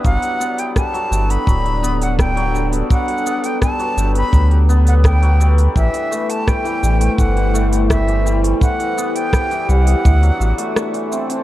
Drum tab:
HH |--o---o---o---o---o---o---o---o-|--o---o---o---o---o---o---o---o-|--o---o---o---o---o---o---o---o-|--o---o---o---o---o---o---o---o-|
SH |x-x-x-x-x-x-x-x-x---x-x-x---x-x-|x--xx-x-x-x-x---x---x-x-x---x-x-|x-x-x-x-x-x-x-x-x---x-x-x---x-x-|x-x-x-x-x-x-x---x-x-x---x-x-x-x-|
SD |--------r---------------r-------|--------r---------------r-------|--------r---------------r-------|--------r---------------r-------|
BD |o-------o-------o-------o-------|o-------o-------o-------o-------|o-------o-------o-------o-------|o-------o-------o---------------|